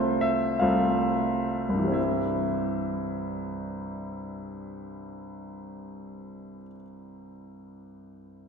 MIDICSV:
0, 0, Header, 1, 2, 480
1, 0, Start_track
1, 0, Key_signature, 0, "major"
1, 0, Tempo, 807537
1, 627, Tempo, 906344
1, 1107, Tempo, 737101
1, 1108, Time_signature, 6, 3, 24, 8
1, 3987, Tempo, 763359
1, 5307, End_track
2, 0, Start_track
2, 0, Title_t, "Grand piano"
2, 0, Program_c, 0, 0
2, 0, Control_c, 0, 64, 127
2, 0, Note_on_c, 0, 36, 42
2, 0, Note_on_c, 0, 57, 36
2, 0, Note_on_c, 0, 60, 37
2, 0, Note_on_c, 0, 65, 38
2, 0, Note_on_c, 0, 72, 62
2, 125, Note_on_c, 0, 76, 61
2, 136, Note_off_c, 0, 72, 0
2, 352, Note_on_c, 0, 77, 53
2, 356, Note_off_c, 0, 57, 0
2, 356, Note_off_c, 0, 65, 0
2, 357, Note_off_c, 0, 36, 0
2, 358, Note_off_c, 0, 60, 0
2, 365, Note_on_c, 0, 57, 34
2, 365, Note_on_c, 0, 65, 34
2, 366, Note_off_c, 0, 76, 0
2, 367, Note_on_c, 0, 36, 43
2, 368, Note_on_c, 0, 60, 34
2, 956, Note_off_c, 0, 36, 0
2, 964, Note_on_c, 0, 36, 38
2, 990, Note_on_c, 0, 43, 31
2, 1015, Note_on_c, 0, 52, 30
2, 1039, Note_on_c, 0, 55, 30
2, 1054, Note_off_c, 0, 60, 0
2, 1062, Note_on_c, 0, 60, 29
2, 1083, Note_off_c, 0, 57, 0
2, 1083, Note_off_c, 0, 65, 0
2, 1084, Note_on_c, 0, 64, 32
2, 1093, Note_on_c, 0, 76, 38
2, 1099, Note_off_c, 0, 77, 0
2, 1123, Control_c, 0, 64, 0
2, 1256, Control_c, 0, 64, 127
2, 4108, Note_off_c, 0, 36, 0
2, 4139, Note_off_c, 0, 43, 0
2, 4168, Note_off_c, 0, 52, 0
2, 4196, Note_off_c, 0, 55, 0
2, 4224, Note_off_c, 0, 60, 0
2, 4250, Note_off_c, 0, 64, 0
2, 4261, Note_off_c, 0, 76, 0
2, 5307, End_track
0, 0, End_of_file